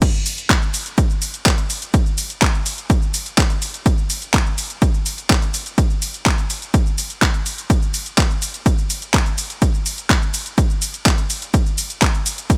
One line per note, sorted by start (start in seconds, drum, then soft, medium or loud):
0.02 kick loud
0.02 closed hi-hat medium
0.02 crash loud
0.02 ride medium
0.02 shaker soft
0.14 shaker soft
0.26 open hi-hat loud
0.26 ride medium
0.26 shaker medium
0.38 closed hi-hat medium
0.38 shaker soft
0.50 kick loud
0.50 clap loud
0.50 closed hi-hat medium
0.50 ride medium
0.50 shaker soft
0.62 shaker soft
0.74 open hi-hat loud
0.74 ride medium
0.74 shaker medium
0.86 closed hi-hat medium
0.86 shaker soft
0.98 kick loud
0.98 closed hi-hat medium
0.98 ride medium
0.98 shaker soft
1.10 shaker soft
1.22 open hi-hat loud
1.22 ride medium
1.22 shaker medium
1.34 closed hi-hat medium
1.34 shaker soft
1.46 kick loud
1.46 clap loud
1.46 closed hi-hat medium
1.46 ride medium
1.46 shaker soft
1.58 closed hi-hat soft
1.58 shaker soft
1.70 open hi-hat medium
1.70 ride medium
1.70 shaker medium
1.82 closed hi-hat medium
1.82 shaker soft
1.94 kick loud
1.94 closed hi-hat medium
1.94 ride medium
1.94 shaker soft
2.06 shaker soft
2.18 open hi-hat loud
2.18 ride medium
2.18 shaker medium
2.30 closed hi-hat medium
2.30 shaker soft
2.42 kick loud
2.42 clap loud
2.42 closed hi-hat medium
2.42 ride medium
2.42 shaker soft
2.54 shaker soft
2.66 open hi-hat loud
2.66 ride medium
2.66 shaker medium
2.78 closed hi-hat medium
2.78 shaker soft
2.90 kick loud
2.90 closed hi-hat medium
2.90 ride medium
2.90 shaker soft
3.02 shaker soft
3.14 open hi-hat loud
3.14 ride medium
3.14 shaker medium
3.26 closed hi-hat medium
3.26 shaker soft
3.38 kick loud
3.38 clap loud
3.38 closed hi-hat medium
3.38 ride medium
3.38 shaker soft
3.50 closed hi-hat soft
3.50 shaker soft
3.62 open hi-hat medium
3.62 ride medium
3.62 shaker medium
3.74 closed hi-hat medium
3.74 shaker soft
3.86 kick loud
3.86 closed hi-hat medium
3.86 ride medium
3.86 shaker soft
3.98 shaker soft
4.10 open hi-hat loud
4.10 ride medium
4.10 shaker medium
4.22 closed hi-hat medium
4.22 shaker soft
4.34 kick loud
4.34 clap loud
4.34 closed hi-hat medium
4.34 ride medium
4.34 shaker soft
4.46 shaker soft
4.58 open hi-hat loud
4.58 ride medium
4.58 shaker medium
4.70 closed hi-hat medium
4.70 shaker soft
4.82 kick loud
4.82 closed hi-hat medium
4.82 ride medium
4.82 shaker soft
4.94 shaker soft
5.06 open hi-hat loud
5.06 ride medium
5.06 shaker medium
5.18 closed hi-hat medium
5.18 shaker soft
5.30 kick loud
5.30 clap loud
5.30 closed hi-hat medium
5.30 ride medium
5.30 shaker soft
5.42 closed hi-hat soft
5.42 shaker soft
5.54 open hi-hat loud
5.54 ride medium
5.54 shaker medium
5.66 closed hi-hat medium
5.66 shaker soft
5.78 kick loud
5.78 closed hi-hat medium
5.78 ride medium
5.78 shaker soft
5.90 shaker soft
6.02 open hi-hat loud
6.02 ride medium
6.02 shaker medium
6.14 closed hi-hat medium
6.14 shaker soft
6.26 kick loud
6.26 clap loud
6.26 closed hi-hat medium
6.26 ride medium
6.26 shaker soft
6.38 closed hi-hat soft
6.38 shaker soft
6.50 open hi-hat loud
6.50 ride medium
6.50 shaker medium
6.62 closed hi-hat soft
6.62 shaker soft
6.74 kick loud
6.74 closed hi-hat medium
6.74 ride medium
6.74 shaker soft
6.86 shaker soft
6.98 open hi-hat loud
6.98 ride medium
6.98 shaker medium
7.10 closed hi-hat medium
7.10 shaker soft
7.22 kick loud
7.22 clap loud
7.22 closed hi-hat medium
7.22 ride medium
7.22 shaker soft
7.34 closed hi-hat soft
7.34 shaker soft
7.46 open hi-hat medium
7.46 ride medium
7.46 shaker medium
7.58 closed hi-hat medium
7.58 shaker soft
7.70 kick loud
7.70 closed hi-hat medium
7.70 ride medium
7.70 shaker soft
7.82 shaker soft
7.94 open hi-hat loud
7.94 ride medium
7.94 shaker medium
8.06 closed hi-hat medium
8.06 shaker soft
8.18 kick loud
8.18 clap loud
8.18 closed hi-hat medium
8.18 ride medium
8.18 shaker soft
8.30 shaker soft
8.42 open hi-hat loud
8.42 ride medium
8.42 shaker medium
8.54 closed hi-hat medium
8.54 shaker soft
8.66 kick loud
8.66 closed hi-hat medium
8.66 ride medium
8.66 shaker soft
8.78 shaker soft
8.90 open hi-hat loud
8.90 ride medium
8.90 shaker medium
9.02 closed hi-hat medium
9.02 shaker soft
9.14 kick loud
9.14 clap loud
9.14 closed hi-hat medium
9.14 ride medium
9.14 shaker soft
9.26 closed hi-hat soft
9.26 shaker soft
9.38 open hi-hat medium
9.38 ride medium
9.38 shaker medium
9.50 closed hi-hat medium
9.50 shaker soft
9.62 kick loud
9.62 closed hi-hat medium
9.62 ride medium
9.62 shaker soft
9.74 shaker soft
9.86 open hi-hat loud
9.86 ride medium
9.86 shaker medium
9.98 closed hi-hat medium
9.98 shaker soft
10.10 kick loud
10.10 clap loud
10.10 closed hi-hat medium
10.10 ride medium
10.10 shaker soft
10.22 shaker soft
10.34 open hi-hat loud
10.34 ride medium
10.34 shaker medium
10.46 closed hi-hat medium
10.46 shaker soft
10.58 kick loud
10.58 closed hi-hat medium
10.58 ride medium
10.58 shaker soft
10.70 shaker soft
10.82 open hi-hat loud
10.82 ride medium
10.82 shaker medium
10.94 closed hi-hat medium
10.94 shaker soft
11.06 kick loud
11.06 clap loud
11.06 closed hi-hat medium
11.06 ride medium
11.06 shaker soft
11.18 closed hi-hat soft
11.18 shaker soft
11.30 open hi-hat medium
11.30 ride medium
11.30 shaker medium
11.42 closed hi-hat medium
11.42 shaker soft
11.54 kick loud
11.54 closed hi-hat medium
11.54 ride medium
11.54 shaker soft
11.66 shaker soft
11.78 open hi-hat loud
11.78 ride medium
11.78 shaker medium
11.90 closed hi-hat medium
11.90 shaker soft
12.02 kick loud
12.02 clap loud
12.02 closed hi-hat medium
12.02 ride medium
12.02 shaker soft
12.14 shaker soft
12.26 open hi-hat medium
12.26 ride medium
12.26 shaker medium
12.38 closed hi-hat medium
12.38 shaker soft
12.50 kick loud
12.50 closed hi-hat medium
12.50 ride medium
12.50 shaker soft